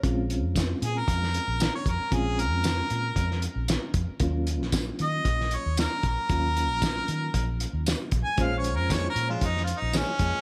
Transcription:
<<
  \new Staff \with { instrumentName = "Harmonica" } { \time 4/4 \key bes \minor \tempo 4 = 115 r4. aes'16 bes'4. des''16 bes'8 | aes'8 bes'2 r4. | r4. ees''4 des''8 bes'8 bes'8~ | bes'2~ bes'8 r8 \tuplet 3/2 { r4 aes''8 } |
\tuplet 3/2 { f''8 des''8 bes'8 des''8 bes'8 f'8 ees'8 f'8 ees'8 } des'4 | }
  \new Staff \with { instrumentName = "Reed electric piano" } { \time 4/4 \key bes \minor <aes c' des' f'>1 | <aes c' des' f'>1 | <ges bes des' f'>1 | <ges bes des' f'>1 |
<aes des' f' c''>1 | }
  \new Staff \with { instrumentName = "Clean electric guitar" } { \clef bass \time 4/4 \key bes \minor r1 | r1 | r1 | r1 |
<bes, f aes des'>16 r8. <bes, f aes des'>16 r8 <f aes des'>16 r4 <bes, f aes des'>16 r16 <bes, f aes des'>16 r16 | }
  \new Staff \with { instrumentName = "Fingered electric bass" } { \clef bass \time 4/4 \key bes \minor bes,,8. f,8. bes,8 f,8. bes,,8 r16 f,16 r16 | bes,,8. f,8. bes,8 f,8. bes,,8 r16 f,16 r16 | ees,8. bes,,8. ees8 bes,,8. ees,8 r16 bes,,16 r16 | ees,8. bes,,8. ees8 bes,,8. ees,8 r16 bes,,16 r16 |
bes,,8. f,8. bes,8 f,8. bes,,8 r16 f,16 r16 | }
  \new DrumStaff \with { instrumentName = "Drums" } \drummode { \time 4/4 <hh bd>8 hh8 <hh bd sn tamb>8 hh8 <hh bd>16 sn16 hh8 <hh sn tamb>8 <hh bd>8 | <hh bd>8 hh8 <hh sn tamb>8 hh8 <hh bd>16 sn16 hh8 <hh sn tamb>8 <hh bd>8 | <hh bd>8 hh16 sn16 <hh bd sn tamb>8 hh8 <hh bd>16 sn16 hh8 <hh sn tamb>8 <hh bd>8 | <hh bd>8 hh8 <hh bd sn tamb>8 hh8 <hh bd>8 hh8 <hh sn tamb>8 <hh bd>8 |
<hh bd>8 hh8 <hh bd sn tamb>8 hh8 <hh bd>16 sn16 hh8 <hh sn tamb>8 <hh bd>8 | }
>>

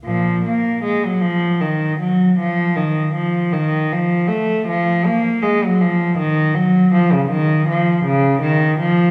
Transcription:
\new Staff \with { instrumentName = "Cello" } { \clef bass \time 3/4 \key f \phrygian \tempo 4 = 79 <bes, f>8 bes8 aes16 ges16 f8 ees8 ges8 | f8 ees8 f8 ees8 f8 a8 | f8 bes8 aes16 ges16 f8 ees8 ges8 | f16 des16 ees8 f8 des8 ees8 f8 | }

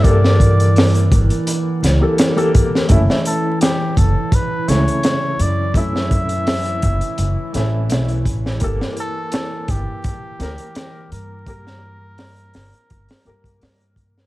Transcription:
<<
  \new Staff \with { instrumentName = "Muted trumpet" } { \time 4/4 \key g \lydian \tempo 4 = 84 d''4. r2 r8 | r8 a'8 g'8 a'8 b'8 cis''4 d''8 | e''2. r4 | r8 a'4 g'2 bes'8~ |
bes'2.~ bes'8 r8 | }
  \new Staff \with { instrumentName = "Felt piano" } { \time 4/4 \key g \lydian <bes g' a'>2~ <bes g' a'>8 r16 <bes g' a'>8 <bes g' a'>8. | <a cis' e'>2~ <a cis' e'>8 <cis a e'>4. | <a cis' e'>2~ <a cis' e'>8 <a cis' e'>4. | <bes g' a'>2~ <bes g' a'>8 <bes g' bes'>4. |
<bes g' bes'>2~ <bes g' bes'>8 <bes g' bes'>4. | }
  \new Staff \with { instrumentName = "Ambient pad" } { \time 4/4 \key g \lydian <e e'>1 | <e e'>1~ | <e e'>1~ | <e e'>1~ |
<e e'>1 | }
  \new Staff \with { instrumentName = "Upright bass" } { \clef bass \time 4/4 \key g \lydian g,4. g,,8 r8 cis,8 r4 | fis,,8 r4 fis,,8 r8 cis,8 r8 fis,8~ | fis,4. fis,,8 fis,,8 a,,8 b,,8 a,,8 | g,,8 r4 g,,8 r8 d,8 r8 g,8~ |
g,4. g,,8 g,,8 g,8 g,4 | }
  \new DrumStaff \with { instrumentName = "Drums" } \drummode { \time 4/4 <hh bd>16 sn16 <hh bd>16 hh16 <hho sn>16 hh16 <hh bd>16 hh16 hh8 <hh sn>8 <hh sn>16 hh16 <hh bd>16 sn16 | <hh bd>16 sn16 hh8 <hh sn>8 <hh bd>8 <hh bd>8 <hh sn>16 hh16 <hh sn>8 hh8 | <hh bd>16 sn16 <hh bd>16 hh16 <hho sn>16 hh16 <hh bd>16 hh16 hh8 <hh sn>8 <hh sn>16 hh16 <hh bd>16 sn16 | <hh bd>16 sn16 hh8 <hh sn>8 <hh bd>8 <hh bd>8 <hh sn>16 hh16 <hh sn>8 hh8 |
<hh bd>16 sn8. <hho sn>16 hh16 <hho sn>16 hh16 <hh bd>16 <hho sn>16 hh16 <hh bd>16 <hho sn>16 hh16 <hh bd>16 sn16 | }
>>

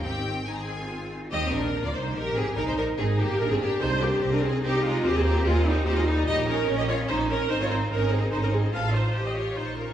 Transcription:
<<
  \new Staff \with { instrumentName = "Violin section" } { \time 3/4 \key aes \major \tempo 4 = 146 g''4 \tuplet 3/2 { aes''16 bes''16 aes''4~ } aes''8 r8 | \key ees \major ees''8 bes'8. d''16 c''8 bes'8 aes'8 | bes'16 c''16 bes'8 aes'8 g'8 bes'16 aes'16 g'8 | c''16 ees''16 c''16 ees''16 c''16 ees''16 c''16 ees''16 c''16 ees''16 c''16 ees''16 |
c''16 ees''16 c''16 ees''16 c''16 ees''16 c''16 ees''16 c''16 ees''16 c''16 ees''16 | \key aes \major des''16 ees''16 des''16 ees''16 des''16 ees''16 des''16 ees''16 des''16 ees''16 des''16 ees''16 | c''16 ees''16 c''16 ees''16 c''16 ees''16 c''16 ees''16 c''16 ees''16 c''16 ees''16 | ees''16 f''16 ees''16 f''16 ees''16 f''16 ees''16 f''16 bes''16 des'''16 bes''16 des'''16 | }
  \new Staff \with { instrumentName = "Viola section" } { \time 3/4 \key aes \major <ees c'>4 <ees c'>4. r8 | \key ees \major ees''8 bes'8. d''16 c''8 bes'8 aes'8 | bes'16 c''16 bes'8 aes'8 g'8 bes'16 aes'16 g'8 | c''8 g'8. bes'16 aes'8 g'8 f'8 |
g'16 aes'16 g'8 f'8 ees'8 g'16 f'16 ees'8 | \key aes \major ees''8 bes'8. ees''16 des''8 c''8 bes'8 | c''16 des''16 c''8 bes'8 aes'8 c''16 bes'16 aes'8 | f''8 c''8. ees''16 des''8 c''8 bes'8 | }
  \new Staff \with { instrumentName = "Cello section" } { \time 3/4 \key aes \major c'4 ees'16 aes'8 f'4 ees'16 | \key ees \major c'4 bes4 g'4 | ees'4 ees'4 d'4~ | d'4 c'4 ees'4 |
c'2 ees'4 | \key aes \major ees'4 des'2 | c'4 ees'2 | f'4 g'4 f'4 | }
  \new Staff \with { instrumentName = "Violin section" } { \time 3/4 \key aes \major g'4 aes'4. r8 | \key ees \major g'8 d'8. f'16 ees'8 ees'8 c'8 | ees'16 ees'16 d'8 c'8 bes8 ees'16 c'16 bes8 | ees'8 bes8. d'16 c'8 c'8 aes8 |
c'16 c'16 bes8 aes8 g8 c'16 aes16 g8 | \key aes \major g'8 des'8. g'16 f'8 ees'8 des'8 | ees'16 f'16 ees'8 des'8 c'8 ees'16 des'16 c'8 | a'8 ees'8. g'16 f'8 ees'8 des'8 | }
  \new Staff \with { instrumentName = "Double bass section" } { \clef bass \time 3/4 \key aes \major aes,,2~ aes,,8 r8 | \key ees \major ees,8 bes,,8. d,16 c,8 bes,,8 aes,,8 | bes,,16 c,16 bes,,8 aes,,8 g,,8 bes,,16 aes,,16 g,,8 | c,4 c,4 c,4 |
ees,4 ees,4 ees,4 | \key aes \major bes,,4 bes,,4 bes,,4 | aes,,4 aes,,4 aes,,4 | a,,4 a,,4 bes,,4 | }
>>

